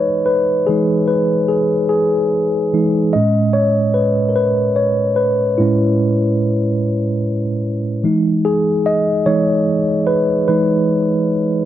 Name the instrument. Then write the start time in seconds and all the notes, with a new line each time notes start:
tine electric piano
Already playing: E3 G#3 D#4 B4 C#5 D#5
0.26 B4
0.67 E3 G#3 D#4 G#4
1.08 B4
1.48 G#4
1.89 G#4
2.74 E3 G#3 D#4
3.13 A2 G#3 C#4 D#5
3.53 C#5
3.94 B4
4.29 A#4
4.36 B4
4.76 C#5
5.16 B4
5.58 A2 G#3 C#4 E4
8.04 E3 G#3 D#4
8.45 G#4
8.86 D#5
9.26 E3 G#3 D#4 C#5
10.07 B4
10.48 E3 G#3 D#4 B4